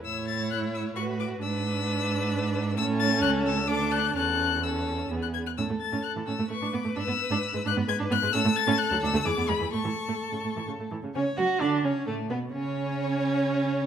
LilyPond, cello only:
\new Staff \with { instrumentName = "Cello" } { \clef bass \time 3/4 \key a \major \tempo 4 = 130 a,2 a,4 | gis,2. | a,4 cis,4 d,4 | e,2 e,8 r8 |
a,16 a,16 r16 a,16 r16 a,16 a,16 a,16 a,16 a,16 a,16 a,16 | gis,16 gis,16 r16 gis,16 r16 gis,16 gis,16 gis,16 gis,16 gis,16 gis,16 gis,16 | a,16 a,16 r16 a,16 r16 d,16 d,16 d,16 e,16 e,16 e,16 e,16 | a,16 a,16 r16 a,16 r16 a,16 a,16 a,16 a,16 a,16 a,16 a,16 |
\key fis \minor cis8 fis8 d8 cis8 a,8 b,8 | cis2. | }